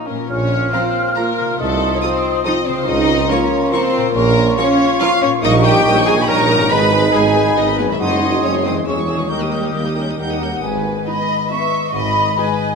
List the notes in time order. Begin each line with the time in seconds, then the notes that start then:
Already playing: F3 A#3 C#4 A#4 C#5 F5
0.06 A#3 C#4 F4 A#4
0.10 A#2
0.15 A#3 C#4
0.19 F4
0.29 A#1 C#4 F4 C#5 F6
0.72 F3 A#3 C4 F4 A#4 C5 A#5
1.16 F3 A#3 F4 A#4 A#5
1.40 C3
1.44 D#4
1.49 F4
1.59 C2 A3 D#4 A4 D#6
1.95 C#5
2.02 F3 C4 F4 A4 C5 D#6
2.45 F3 C4 D#4 F4 A4 D#5 D#6
2.66 C#3 C4 C5
2.73 C#4
2.78 F4
2.83 A#4
2.87 C#2 D#4 F4 D#5 A#5
3.29 F3 A#3 C#4 F4 A#4 C#5 C#6
3.71 F3 A#3 C4 A#4 C5 C#6
3.75 F4
3.97 A#2
4.01 C#4
4.06 F4
4.10 A#4
4.15 A#1 A#3 C#4 A#4 C#6
4.57 F3 C#4 F4 A#4 C#5 C#6
5.00 F3 C#4 F4 A#4 F5 C#6
5.21 A#2 C#4 C#5
5.29 C#4
5.34 D#4 A#4
5.42 A#1 G3 D#4 A#4 D#5 D#6
5.52 D#3 G4 C#6
5.64 G3 G4 A#4 G5 D#6
5.75 D#3 G4 C#6
5.85 A#1 G3 C#4 D#4 A#4 D#6
5.96 D#3 G4 C#6
6.06 G3 G#4 A#4 G#5 D#6
6.16 D#3 G4 C#6
6.22 B5
6.27 A#1 G3 C#4 D#4 A#4 A#5 D#6
6.38 D#3 G4 C#6
6.48 G3 A#4 D#6
6.53 G#2
6.57 D#3 B3 G4 C#6
6.62 D#4
6.66 G#3 B4 G#5 B5
6.70 G#1 D#4 B4 B5
6.80 D#3 G#4 B5
6.91 G#3 B4 G#5
7.02 D#3 G#4 B5
7.12 G#1 G#3 B3 D#4 G#4 B4 G#5
7.23 D#3 G#4 B5
7.35 G#3 B4 G#5
7.46 D#3 G#4 B5
7.56 G#1 G#3 B3 D#4 B4 D#5 G#5
7.67 D#3 G#4 B5
7.78 F#2 G#3 B3 B4 G#5
7.86 D#3 G#3 G#4
7.91 G#4 E5 B5
7.95 C5
7.99 F#1 F#2 F#3 D#4 F#4 G#4 D#5 C6 D#6
8.10 G#3 F#4 C6
8.21 F#3 G#4 D#6
8.31 G#3 F#4 C6
8.42 F#1 F#2 F#3 G#3 C4 C#4 D#4 G#4 C#5 D#6
8.53 G#3 F#4 C6
8.65 E3 F#3 C4 G#4 C5 D#6
8.73 G#3 F#4 C6
8.78 G#4
8.82 C#5
8.87 E1 E2 E3 G#3 C#4 G#4 C#5 C#6 E6
8.97 G#3 E4 C#6
9.08 E3 G#3 G#4 E6
9.14 D#3
9.18 G#3 A#3 E4 C#6
9.22 D#4
9.27 D#2 G3 A#4 D#5 D#6 G6
9.31 D#2 G3 D#4 G4 A#4
9.41 D#3 G4 D#6
9.52 G3 A#4 G6
9.63 D#3 G4 D#6
9.74 D#2 G3 A#3 A#4 G6
9.85 D#3 G4 D#6
9.96 G3 C#4 A#4 G6
10.07 D#3 G4 D#6
10.19 D#2 G3 D#4 A#4 F#5 G6
10.29 D#3 G4 D#6
10.41 G3 C#4 A#4 G6
10.52 D#3 G4 D#6
10.63 G#1 G#2 B4 G#5
10.75 D#3
10.85 B3
10.97 D#4
11.06 B3 D#4 D#5 B5
11.17 B4
11.29 D#5
11.39 D#6
11.49 B3 D#4 D#5 E5 C#6
11.60 B4
11.71 D#5
11.83 D#4
11.93 G#1 G#2 D#5 B5
12.03 D#3
12.15 G#3
12.25 D#4
12.35 G#3 D#4 B4 D#5 G#5
12.46 G#4
12.55 D#5
12.67 D#6